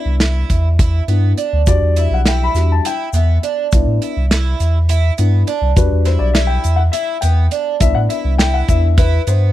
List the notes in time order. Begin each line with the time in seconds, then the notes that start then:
Already playing: B3 D4 E4 E5
0.05 C2
0.20 E4, snare, closed hi-hat
0.50 E2, kick, closed hi-hat
0.79 E4, kick, closed hi-hat
1.08 G2 B3 D4 E4, closed hi-hat
1.37 D4, closed hi-hat
1.53 D2
1.67 E2 G3 D4 F#4 D5, kick, closed hi-hat, shaker
1.82 E2
1.96 E4 E5, closed hi-hat
2.11 B1 F#5
2.26 E4 G5, snare, closed hi-hat
2.43 B5
2.54 E2 G3 D4 F#4, snare, closed hi-hat, shaker
2.72 A5
2.85 E4 G5, closed hi-hat
3.13 E2 B3 E5, closed hi-hat, shaker
3.43 D4, closed hi-hat
3.72 C2 B3 D4 E4, kick, closed hi-hat, shaker
3.87 A2
4.02 E4, closed hi-hat
4.17 C2
4.31 E4, snare, closed hi-hat
4.60 E2, closed hi-hat, shaker
4.89 E4, closed hi-hat
5.18 G2 B3 D4 E4, closed hi-hat, shaker
5.47 D4, closed hi-hat
5.62 C2
5.76 E2 G3 D4 F#4 B4, kick, closed hi-hat, shaker
5.92 E2
6.05 E4 C5, snare, closed hi-hat
6.19 B1 D5
6.33 E4 E5, snare, closed hi-hat
6.47 G5
6.64 E2, closed hi-hat, shaker
6.76 F#5
6.92 E4 E5, closed hi-hat
7.21 E2 B3 G5, closed hi-hat, shaker
7.51 D4, closed hi-hat
7.80 C2 B3 D4 E4 E5, kick, closed hi-hat, shaker
7.95 A2 F#5
8.09 E4 E5, closed hi-hat
8.24 C2
8.38 E4 G5, snare, closed hi-hat, shaker
8.54 F#5
8.68 E2 B3 D4 E4 E5, kick, closed hi-hat, shaker
8.98 E4 B4, kick, closed hi-hat
9.27 G2 B3 C5, closed hi-hat, shaker